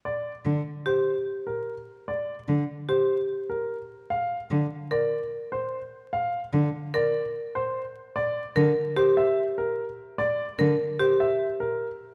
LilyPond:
<<
  \new Staff \with { instrumentName = "Grand piano" } { \time 5/4 \key c \mixolydian \tempo 4 = 148 d''8 r4. c''8 r4 bes'8 r4 | d''8 r4. c''8 r4 bes'8 r4 | f''8 r4. d''8 r4 c''8 r4 | f''8 r4. d''8 r4 c''8 r4 |
d''8 r4. c''8 e''8 r8 bes'8 r4 | d''8 r4. c''8 e''8 r8 bes'8 r4 | }
  \new Staff \with { instrumentName = "Marimba" } { \time 5/4 \key c \mixolydian r2 g'8 r2 r8 | r2 g'8 r2 r8 | r2 bes'8 r2 r8 | r2 bes'8 r2 r8 |
r4 bes'8 r8 g'8 r2 r8 | r4 bes'8 r8 g'8 r2 r8 | }
  \new Staff \with { instrumentName = "Cello" } { \clef bass \time 5/4 \key c \mixolydian r4 d8 r2. r8 | r4 d8 r2. r8 | r4 d8 r2. r8 | r4 d8 r2. r8 |
r4 d8 r2. r8 | r4 d8 r2. r8 | }
>>